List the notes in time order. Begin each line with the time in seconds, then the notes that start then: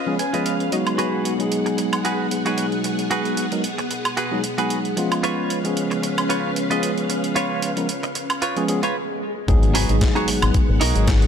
Already playing: C#4 F4 B4 D#5 F5
0.07 F3 G#3 B3 C#4 G#4
0.19 G#5, closed hi-hat
0.33 F3 G#3 B3 C#4 F4 G#4 B4 D#5, closed hi-hat
0.46 F5, closed hi-hat
0.60 closed hi-hat
0.71 F#3 G#3 B3 D#4 F#4 D#5, muted clean electric guitar stroke, closed hi-hat
0.87 closed hi-hat, high woodblock
0.98 B3 F#4 G#4 B4 F#5, closed hi-hat
1.25 closed hi-hat
1.39 F#3 G#3 B3 D#4 G#4, closed hi-hat
1.52 closed hi-hat
1.66 muted clean electric guitar stroke, closed hi-hat
1.78 muted clean electric guitar stroke, closed hi-hat
1.93 closed hi-hat, high woodblock
2.05 F#4 G#4 B4, closed hi-hat
2.31 closed hi-hat
2.45 F#3 G#3 B3 D#4 F#4 G#4 B4, closed hi-hat
2.58 closed hi-hat
2.72 closed hi-hat
2.84 muted clean electric guitar stroke, closed hi-hat
2.99 closed hi-hat
3.11 F#4 G#4 B4, closed hi-hat
3.25 closed hi-hat
3.37 closed hi-hat
3.52 F#3 G#3 B3 D#4 A#4, closed hi-hat
3.64 closed hi-hat
3.78 muted clean electric guitar stroke, closed hi-hat
3.91 muted clean electric guitar stroke, closed hi-hat
4.05 closed hi-hat, high woodblock
4.17 F#4 G#4 B4, closed hi-hat
4.32 F#3 G#3 B3 D#4 G#4
4.44 closed hi-hat
4.58 F#3 G#3 B3 D#4 F#4 G#4 B4, closed hi-hat
4.70 closed hi-hat
4.85 closed hi-hat
4.96 F3 G#3 B3 C#4 F4, muted clean electric guitar stroke, closed hi-hat
5.12 closed hi-hat, high woodblock
5.23 C#4 F4 B4 C#5 F5, closed hi-hat
5.50 closed hi-hat
5.64 F3 G#3 B3 C#4 G#4, closed hi-hat
5.77 closed hi-hat
5.91 muted clean electric guitar stroke, closed hi-hat
6.03 muted clean electric guitar stroke, closed hi-hat
6.18 closed hi-hat, high woodblock
6.29 F4 B4 C#5, closed hi-hat
6.56 closed hi-hat
6.70 F3 G#3 B3 C#4 F4 G#4 B4 D#5, closed hi-hat
6.83 closed hi-hat
6.98 closed hi-hat
7.09 muted clean electric guitar stroke, closed hi-hat
7.24 closed hi-hat
7.36 F4 B4 C#5, closed hi-hat
7.62 closed hi-hat
7.77 F3 G#3 B3 C#4 A#4, closed hi-hat
7.89 closed hi-hat
8.03 muted clean electric guitar stroke, closed hi-hat
8.15 muted clean electric guitar stroke, closed hi-hat
8.30 closed hi-hat, high woodblock
8.42 F4 B4 C#5, closed hi-hat, swell
8.56 F3 G#3 B3 C#4 G#4, closed hi-hat
8.68 F3 G#3 B3 C#4 G#4, closed hi-hat
8.83 F4 B4 C#5, closed hi-hat
9.48 G#1 F#3 G#3 B3 D#4 G#4 F#5, kick, closed hi-hat, impact
9.63 closed hi-hat
9.74 D#4 F#4 G#4 B4, open hi-hat
9.89 G#1 F#3 G#3 B3 D#4 G#4, closed hi-hat
10.01 kick, snare, closed hi-hat
10.15 D#4 F#4 G#4 C#5, closed hi-hat
10.28 open hi-hat
10.42 G#1, muted clean electric guitar stroke, closed hi-hat, high woodblock
10.54 kick, closed hi-hat
10.69 G#1
10.81 B1 D#4 F#4 G#4 A#4, open hi-hat
10.94 G#1 F#3 G#3 B3 D#4 G#4, closed hi-hat
11.07 kick, snare, closed hi-hat
11.22 closed hi-hat